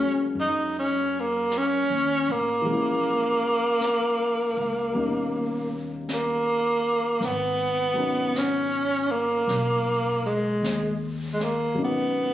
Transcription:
Already playing: upright bass D2, grand piano C#3 F#3 G#3 A#3 D#4, tenor saxophone C#4
0.00 grand piano C#4
0.35 upright bass F#2, brush sweep
0.40 tenor saxophone D#4
0.79 tenor saxophone C#4
1.20 tenor saxophone A#3
1.51 brush sweep, snare, hi-hat pedal
1.57 tenor saxophone C#4
1.90 upright bass D#2
2.28 upright bass A1, tenor saxophone A#3
2.61 grand piano E3 G#3
2.66 upright bass A#1, grand piano A#3 C#4, brush sweep
2.73 grand piano E4
3.81 brush sweep, snare, hi-hat pedal
4.57 upright bass C#2
4.93 upright bass D#2, grand piano B2 G3 A#3 C#4, brush sweep
4.97 grand piano D#4
6.09 brush sweep, snare, hi-hat pedal
6.13 tenor saxophone A#3
7.20 upright bass G#1, brush sweep, snare
7.25 tenor saxophone B3
7.94 grand piano B2 F#3 C#4 A#4
7.99 grand piano D#4
8.35 tenor saxophone C#4, brush sweep, snare, hi-hat pedal
9.11 tenor saxophone A#3
9.47 upright bass B1, brush sweep, snare
10.26 tenor saxophone G#3
10.62 upright bass D#2, brush sweep, snare, hi-hat pedal
11.33 tenor saxophone G#3
11.40 tenor saxophone A#3, snare
11.74 upright bass G#1, grand piano B2 F#3 C#4 A#4, brush sweep
11.79 grand piano D#4
11.84 tenor saxophone B3

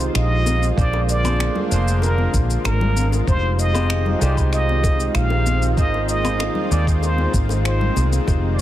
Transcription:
Already playing: analog synth pad D#3 G#3 C4 F4, tine electric piano G#3 D#4 F4 G4 C5 D#5 G5, muted trumpet C5
0.00 shaker
0.15 fretless electric bass A#1, muted trumpet D#5, finger snap, shaker
0.46 high bongo, high conga, shaker
0.63 shaker
0.76 fretless electric bass A#1, analog synth pad D3 A#3, tine electric piano A#3 D4 F4 G#4 C5, muted trumpet D5, kick, shaker
0.93 high bongo
1.09 muted trumpet D5, shaker
1.24 tine electric piano A#3 D4 F4 G#4 C5, finger snap, high conga, low woodblock, shaker
1.40 finger snap, shaker
1.55 high bongo, low conga
1.69 fretless electric bass F1, tine electric piano A#3 D4 F4 G#4, muted trumpet C5, shaker
1.73 tine electric piano C5
1.88 shaker
2.02 muted trumpet A#4, high bongo, shaker
2.18 high conga
2.34 fretless electric bass A#1, kick, shaker
2.50 shaker
2.65 fretless electric bass G#1, muted trumpet A#4, finger snap, high bongo, shaker
2.81 low conga
2.97 high conga, shaker
3.12 high bongo, shaker
3.27 fretless electric bass F1, analog synth pad D#3 C4, tine electric piano G#3 D#4 F4 G4 C5, muted trumpet C5, kick, shaker
3.59 muted trumpet D#5, shaker
3.74 tine electric piano G#3 D#4 F4 G4 C5, high bongo, high conga, low woodblock, shaker
3.90 finger snap, shaker
4.06 low conga
4.19 fretless electric bass C2, tine electric piano G#3 D#4 F4 G4, muted trumpet D5, high bongo, shaker
4.23 tine electric piano C5
4.37 kick, low woodblock, shaker
4.53 muted trumpet D#5, finger snap, shaker
4.69 high conga
4.84 kick, high bongo, shaker
5.00 shaker
5.15 fretless electric bass A#1, muted trumpet F5, finger snap, shaker
5.30 high bongo
5.46 high conga, shaker
5.62 shaker
5.77 fretless electric bass G#1, tine electric piano A#3 D#4 F4 G#4 C5, analog synth pad F4, muted trumpet D#5, kick, shaker
5.94 high bongo
6.09 muted trumpet D#5, shaker
6.24 tine electric piano A#3 D#4 F4 G#4 C5, finger snap, high conga, low woodblock, shaker
6.40 finger snap, high bongo, shaker
6.55 low conga
6.69 fretless electric bass D#2, tine electric piano A#3 D#4 F4 G#4 C5, muted trumpet D5, shaker
6.87 kick, shaker
7.03 muted trumpet C5, high bongo, shaker
7.18 high conga
7.34 fretless electric bass G#1, kick, shaker
7.49 high bongo, shaker
7.65 muted trumpet C5, finger snap, shaker
7.81 low conga
7.96 fretless electric bass C2, high conga, shaker
8.13 high bongo, shaker
8.26 fretless electric bass F1, tine electric piano G#3 D#4 F4 G4 C5, analog synth pad F4, kick, high bongo, shaker
8.53 muted trumpet D5

